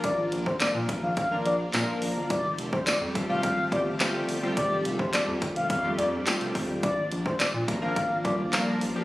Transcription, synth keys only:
\new Staff \with { instrumentName = "Synth keys" } { \time 4/4 \key bes \major \tempo 4 = 106 <f bes d' f' bes'>8 r8 <f bes d' f' bes'>8. r8 <f bes d' f' bes'>8 r16 <f bes d' f' bes'>4 | r4. <g a c' f' g'>16 <g a c' f' g'>8 r16 <g a c' f' g'>16 r16 <g a c' f' g'>8 r16 <g a c' f' g'>16~ | <g a c' f' g'>8 r8 <g a c' f' g'>8. r8 <g a c' f' g'>8 r16 <g a c' f' g'>4 | r4. <f bes d' f' bes'>16 <f bes d' f' bes'>8 r16 <f bes d' f' g'>16 r16 <f bes d' f' bes'>8 r16 <f bes d' f' g'>16 | }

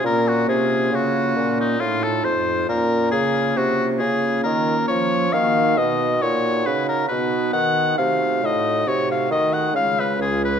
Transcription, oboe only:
\new Staff \with { instrumentName = "Oboe" } { \time 3/4 \key bes \minor \tempo 4 = 68 bes'16 ges'16 aes'8 ges'8. ees'16 f'16 a'16 c''8 | bes'8 aes'8 ges'8 aes'8 bes'8 des''8 | \key dis \minor eis''8 dis''8 cis''8 b'16 ais'16 b'8 fis''8 | eis''8 ees''8 cis''16 eis''16 ees''16 ges''16 eis''16 b'16 gis'16 b'16 | }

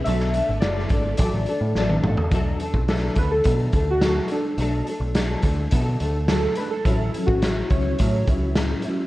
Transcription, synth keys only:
\new Staff \with { instrumentName = "Synth keys" } { \time 4/4 \key b \minor \tempo 4 = 106 e''4 d''4 d''4. r8 | r4 a'8 b'16 a'4 fis'8. d'8~ | d'4 r2 a'8 b'16 a'16~ | a'8. fis'8. cis''4. r4 | }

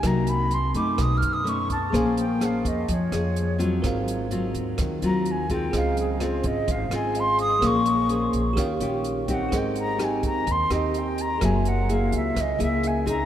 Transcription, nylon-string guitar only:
\new Staff \with { instrumentName = "Nylon-string guitar" } { \time 4/4 \key aes \major \tempo 4 = 127 << { <ges bes ees'>4 r8 <a des' ees'>4. <a cis' dis'>8 r8 | <des' aes' c''>8 r8 <des' aes' c''>4 r8 <des' aes'>4 <ges c' f'>8~ | <ges c' f'>4 <ges c' f'>4. <ges c' f'>4 <aes c' f'>8~ | <aes c' f'>4 <aes c' f'>4. <aes c' f'>4. |
<des' aes'>8 r8 <des' aes' c''>8 r8 <des' f' g'>8 <des' f' g'>4 <c' ees' g'>8~ | <c' ees' g'>4 <c' ees' g'>4 r8 <c' ees' g'>4. | <bes fes' aes'>4 <bes fes' aes'>4 r8 <bes fes' aes'>4 <c' ees' aes'>8 | } \\ { c2 b,2 | bes2 f2 | aes,2 ees2 | des2 aes,2 |
bes2 ees2 | aes2 ees2 | ges2 des2 | } >> }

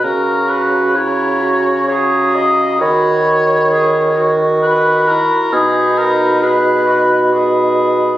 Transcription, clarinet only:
\new Staff \with { instrumentName = "Clarinet" } { \time 3/4 \key b \major \tempo 4 = 66 fis'4 e'8 fis'8 gis'4 | fis'8 r8 gis'8 fis'4. | dis'4 gis'8 fis'8 gis'4 | }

